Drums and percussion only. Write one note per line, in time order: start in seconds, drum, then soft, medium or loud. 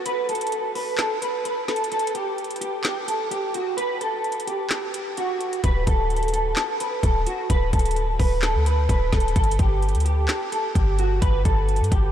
0.06 closed hi-hat medium
0.29 closed hi-hat medium
0.35 closed hi-hat medium
0.41 closed hi-hat medium
0.47 closed hi-hat medium
0.52 closed hi-hat medium
0.75 open hi-hat medium
0.98 snare loud
0.98 clap loud
0.98 closed hi-hat medium
1.22 closed hi-hat medium
1.45 closed hi-hat medium
1.68 snare medium
1.68 closed hi-hat medium
1.76 closed hi-hat medium
1.84 closed hi-hat medium
1.92 closed hi-hat medium
1.99 closed hi-hat medium
2.07 closed hi-hat medium
2.15 closed hi-hat medium
2.38 closed hi-hat soft
2.44 closed hi-hat soft
2.50 closed hi-hat medium
2.56 closed hi-hat medium
2.61 closed hi-hat medium
2.84 snare loud
2.84 clap loud
2.84 closed hi-hat medium
3.08 closed hi-hat medium
3.31 closed hi-hat medium
3.54 closed hi-hat medium
3.78 closed hi-hat medium
4.01 closed hi-hat medium
4.24 closed hi-hat soft
4.32 closed hi-hat medium
4.40 closed hi-hat medium
4.47 closed hi-hat medium
4.70 snare loud
4.70 clap loud
4.70 closed hi-hat medium
4.94 closed hi-hat medium
5.17 closed hi-hat medium
5.41 closed hi-hat medium
5.53 closed hi-hat medium
5.64 kick loud
5.64 closed hi-hat medium
5.87 kick medium
5.87 closed hi-hat medium
6.10 closed hi-hat soft
6.16 closed hi-hat soft
6.23 closed hi-hat medium
6.28 closed hi-hat medium
6.34 closed hi-hat medium
6.56 snare loud
6.56 clap loud
6.56 closed hi-hat medium
6.80 closed hi-hat medium
7.03 kick loud
7.03 closed hi-hat medium
7.26 closed hi-hat medium
7.50 kick loud
7.50 closed hi-hat medium
7.73 kick medium
7.73 closed hi-hat medium
7.79 closed hi-hat medium
7.85 closed hi-hat medium
7.91 closed hi-hat medium
7.96 closed hi-hat medium
8.19 kick medium
8.19 open hi-hat medium
8.42 snare loud
8.42 clap medium
8.42 closed hi-hat medium
8.66 closed hi-hat medium
8.89 kick loud
8.89 closed hi-hat medium
9.13 kick medium
9.13 snare medium
9.13 closed hi-hat medium
9.20 closed hi-hat medium
9.28 closed hi-hat medium
9.36 kick loud
9.36 closed hi-hat medium
9.44 closed hi-hat medium
9.51 closed hi-hat medium
9.59 kick medium
9.59 closed hi-hat medium
9.82 closed hi-hat soft
9.89 closed hi-hat soft
9.95 closed hi-hat medium
10.00 closed hi-hat medium
10.06 closed hi-hat medium
10.28 snare loud
10.28 clap loud
10.28 closed hi-hat medium
10.52 closed hi-hat medium
10.75 kick loud
10.75 closed hi-hat medium
10.99 closed hi-hat medium
11.22 kick loud
11.22 closed hi-hat medium
11.45 kick medium
11.45 closed hi-hat medium
11.69 closed hi-hat soft
11.76 closed hi-hat medium
11.84 closed hi-hat medium
11.92 kick medium
11.92 closed hi-hat medium